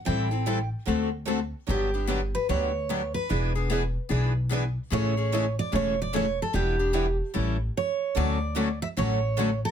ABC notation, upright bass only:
X:1
M:4/4
L:1/8
Q:"Swing" 1/4=148
K:A
V:1 name="Upright bass" clef=bass
A,,,4 D,,4 | =G,,,4 D,,4 | E,,,4 B,,,4 | A,,,4 E,,,4 |
E,,,4 A,,,2 z2 | [K:D] D,,4 A,,,4 |]